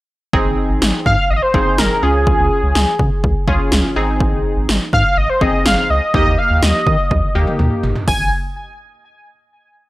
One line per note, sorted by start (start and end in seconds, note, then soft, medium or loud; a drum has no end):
0.33 0.44 G#1 loud
0.33 1.14 C4 medium
0.33 1.14 D#4 medium
0.33 1.14 G#4 loud
0.33 kick loud
0.45 0.56 G#1 medium
0.70 0.80 G#1 medium
0.82 0.92 G#1 loud
0.82 snare loud
1.06 1.16 G#2 loud
1.06 1.32 F5 loud
1.06 kick medium
1.30 1.41 G#1 loud
1.30 1.35 D#5 loud
1.30 1.38 F5 medium
1.36 1.44 D#5 loud
1.42 1.80 C5 loud
1.54 1.65 G#1 loud
1.54 2.03 C4 medium
1.54 2.03 D#4 medium
1.54 2.01 G#4 medium
1.54 kick loud
1.78 1.89 G#1 loud
1.78 2.04 A#4 loud
1.78 snare loud
2.03 2.34 C#2 loud
2.03 2.83 C#4 medium
2.03 2.83 F4 medium
2.03 2.83 G#4 medium
2.03 3.48 G#4 medium
2.27 kick loud
2.39 2.49 C#2 medium
2.63 2.74 C#2 loud
2.75 2.86 C#2 medium
2.75 snare loud
2.99 3.10 C#3 loud
2.99 kick medium
3.24 3.34 C#2 loud
3.24 kick medium
3.48 3.58 C#2 medium
3.48 3.96 C#4 medium
3.48 3.96 F4 medium
3.48 3.95 G#4 loud
3.48 kick medium
3.72 3.82 C#2 loud
3.72 snare loud
3.96 4.27 G#1 medium
3.96 4.77 C4 medium
3.96 4.77 D#4 medium
3.96 4.77 G#4 loud
4.20 kick loud
4.33 4.43 G#1 loud
4.57 4.67 G#1 loud
4.69 4.79 G#1 loud
4.69 snare loud
4.93 5.03 G#2 loud
4.93 5.19 F5 loud
4.93 kick medium
5.17 5.28 G#1 loud
5.17 5.31 D#5 loud
5.29 5.43 C5 medium
5.41 5.52 G#1 loud
5.41 6.02 C4 medium
5.41 6.02 D#4 medium
5.41 6.02 G#4 medium
5.41 5.65 D#5 loud
5.41 kick medium
5.66 5.76 G#1 loud
5.66 5.92 F5 loud
5.66 snare loud
5.90 6.00 C#2 loud
5.90 6.14 D#5 loud
6.14 6.24 D#2 loud
6.14 6.95 A#3 medium
6.14 6.95 D#4 medium
6.14 6.95 G4 medium
6.14 6.40 D#5 loud
6.14 kick loud
6.26 6.37 D#2 medium
6.38 6.64 F5 loud
6.50 6.61 D#2 loud
6.63 6.73 D#2 loud
6.63 7.35 D#5 medium
6.63 snare loud
6.87 6.97 D#3 loud
6.87 kick medium
7.11 7.21 D#2 loud
7.11 kick medium
7.11 high tom medium
7.35 7.45 D#2 loud
7.35 7.96 A#3 medium
7.35 7.96 D#4 medium
7.35 7.96 G4 loud
7.35 mid tom medium
7.47 mid tom medium
7.59 7.70 D#2 loud
7.59 mid tom medium
7.83 7.94 G1 loud
7.83 floor tom medium
7.96 floor tom medium
8.08 8.30 G#1 loud
8.08 8.30 G#5 medium
8.08 kick medium
8.08 open hi-hat medium